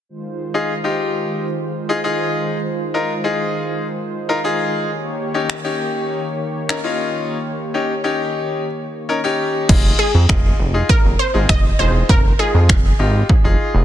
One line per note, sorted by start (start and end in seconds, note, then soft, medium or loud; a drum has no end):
0.09 4.85 D#3 medium
0.09 4.85 G#3 medium
0.09 4.85 F4 medium
0.09 4.85 C5 medium
0.54 0.72 D#4 medium
0.54 0.72 F4 medium
0.54 0.72 G#4 medium
0.84 1.45 D#4 medium
0.84 1.45 F4 medium
0.84 1.45 G4 medium
1.89 1.98 D#4 medium
1.89 1.98 F4 medium
1.89 1.98 G#4 medium
2.04 2.56 D#4 medium
2.04 2.56 F4 medium
2.04 2.56 G#4 loud
2.94 3.11 D#4 medium
2.94 3.12 F4 medium
2.94 3.12 A#4 medium
3.24 3.84 D#4 medium
3.24 3.85 F4 medium
3.24 3.85 G#4 medium
4.29 4.38 D#4 medium
4.29 4.38 F4 medium
4.29 4.38 A#4 loud
4.44 4.89 D#4 medium
4.44 4.89 F4 medium
4.44 4.90 G#4 loud
4.89 9.65 D#3 medium
4.89 9.65 A#3 medium
4.89 9.65 G4 medium
4.89 9.65 C#5 medium
5.34 5.52 C#4 medium
5.34 5.52 D#4 medium
5.34 5.52 G4 medium
5.50 finger snap loud
5.64 6.25 C#4 medium
5.64 6.25 D#4 medium
5.64 6.25 G4 loud
6.69 6.78 C#4 medium
6.69 6.78 D#4 medium
6.69 6.78 A#4 medium
6.69 finger snap loud
6.84 7.36 C#4 medium
6.84 7.36 D#4 medium
6.84 7.36 F4 loud
7.74 7.91 C#4 medium
7.74 7.92 D#4 medium
7.74 7.92 G4 medium
8.04 8.64 C#4 medium
8.04 8.65 D#4 medium
8.04 8.65 G4 medium
9.09 9.18 C#4 medium
9.09 9.18 D#4 medium
9.09 9.18 A#4 loud
9.24 9.69 C#4 medium
9.24 9.67 D#4 medium
9.24 9.69 G4 loud
9.69 9.93 F1 loud
9.69 10.04 D#4 medium
9.69 10.04 F4 medium
9.69 10.04 G#4 loud
9.69 kick loud
9.69 crash medium
9.99 10.85 G#4 medium
10.14 10.26 F2 medium
10.29 10.53 F1 medium
10.29 10.55 D#4 medium
10.29 10.55 F4 medium
10.29 10.55 G#4 medium
10.29 finger snap loud
10.29 kick loud
10.60 10.83 F1 medium
10.74 11.09 D#4 medium
10.74 11.09 F4 medium
10.74 11.09 G#4 medium
10.89 11.20 A#4 loud
10.89 kick loud
11.04 11.16 F1 medium
11.19 11.47 C5 medium
11.34 11.46 G#1 medium
11.34 11.60 D#4 medium
11.34 11.60 F4 medium
11.34 11.60 G#4 medium
11.49 11.73 F1 medium
11.49 11.80 D#5 loud
11.49 finger snap loud
11.49 kick loud
11.79 12.03 E1 loud
11.79 12.14 D#4 medium
11.79 12.14 F4 medium
11.79 12.14 G#4 medium
11.79 12.10 C5 loud
12.09 12.33 F1 loud
12.09 12.40 A#4 loud
12.09 kick loud
12.39 12.74 D#4 medium
12.39 12.74 F4 medium
12.39 12.95 G#4 medium
12.39 12.74 G#4 medium
12.54 12.71 F2 medium
12.69 12.93 F1 loud
12.69 finger snap loud
12.69 kick loud
12.99 13.23 G#1 loud
12.99 13.25 D#4 medium
12.99 13.25 F4 medium
12.99 13.25 G4 medium
13.29 kick loud
13.44 13.56 F1 medium
13.44 13.79 D#4 medium
13.44 13.79 F4 medium
13.44 13.79 G#4 medium
13.74 13.85 F1 medium